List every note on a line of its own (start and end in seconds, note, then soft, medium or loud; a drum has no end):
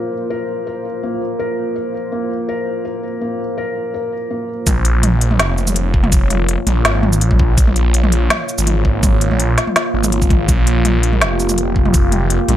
0.00 1.03 A#3 medium
0.00 4.63 A#3 medium
0.00 4.63 F4 medium
0.00 0.30 A#4 loud
0.00 4.65 C5 medium
0.30 0.65 A#4 medium
0.67 0.84 A#4 medium
1.03 1.21 A#3 medium
1.39 1.74 A#4 loud
1.76 1.93 A#4 medium
2.12 2.29 A#3 medium
2.49 2.83 A#4 loud
2.85 3.02 A#4 medium
3.21 3.39 A#3 medium
3.58 3.92 A#4 loud
3.94 4.11 A#4 medium
4.30 4.48 A#3 medium
4.67 5.41 A#1 loud
4.67 12.57 A#3 medium
4.67 12.57 F4 medium
4.67 10.46 C#5 medium
4.67 kick loud
4.67 closed hi-hat medium
4.67 mid tom medium
4.67 shaker medium
4.85 closed hi-hat medium
5.03 closed hi-hat medium
5.03 mid tom medium
5.21 closed hi-hat medium
5.31 mid tom medium
5.39 6.57 F1 medium
5.39 snare loud
5.39 closed hi-hat medium
5.58 shaker soft
5.67 mid tom medium
5.67 shaker medium
5.76 closed hi-hat medium
5.94 kick medium
6.04 mid tom medium
6.12 kick loud
6.12 closed hi-hat medium
6.12 shaker medium
6.30 closed hi-hat medium
6.30 mid tom medium
6.49 closed hi-hat medium
6.67 6.84 A#1 medium
6.67 closed hi-hat medium
6.67 mid tom medium
6.85 7.23 G#1 loud
6.85 snare loud
6.85 closed hi-hat medium
7.03 mid tom medium
7.13 shaker medium
7.21 7.56 A#1 loud
7.21 closed hi-hat medium
7.31 kick medium
7.31 mid tom medium
7.39 kick loud
7.58 8.29 A#1 loud
7.58 kick loud
7.58 closed hi-hat medium
7.58 shaker medium
7.67 mid tom medium
7.76 closed hi-hat medium
7.94 closed hi-hat medium
8.04 mid tom medium
8.12 closed hi-hat medium
8.30 snare loud
8.30 closed hi-hat medium
8.30 mid tom soft
8.49 shaker soft
8.58 9.30 G#1 medium
8.58 shaker medium
8.67 closed hi-hat medium
8.67 mid tom medium
8.85 kick medium
9.03 kick loud
9.03 closed hi-hat medium
9.03 mid tom medium
9.03 shaker medium
9.21 closed hi-hat medium
9.31 9.57 A#1 medium
9.31 mid tom medium
9.40 closed hi-hat medium
9.58 snare medium
9.58 closed hi-hat medium
9.67 mid tom soft
9.76 snare loud
9.76 closed hi-hat medium
9.94 10.48 G#1 loud
10.04 mid tom medium
10.04 shaker medium
10.12 closed hi-hat medium
10.22 kick medium
10.22 shaker soft
10.30 kick loud
10.30 closed hi-hat soft
10.30 mid tom medium
10.49 11.23 A#1 loud
10.49 12.57 G4 medium
10.49 kick loud
10.49 closed hi-hat medium
10.49 mid tom soft
10.49 shaker medium
10.67 closed hi-hat medium
10.85 closed hi-hat medium
10.85 mid tom medium
11.03 closed hi-hat medium
11.13 mid tom soft
11.21 12.39 F1 medium
11.21 snare loud
11.21 closed hi-hat medium
11.40 shaker soft
11.49 mid tom medium
11.49 shaker medium
11.58 closed hi-hat medium
11.76 kick medium
11.85 mid tom medium
11.94 kick loud
11.94 closed hi-hat medium
11.94 shaker medium
12.12 closed hi-hat medium
12.12 mid tom medium
12.30 closed hi-hat medium
12.48 12.57 A#1 medium
12.48 closed hi-hat medium
12.48 mid tom medium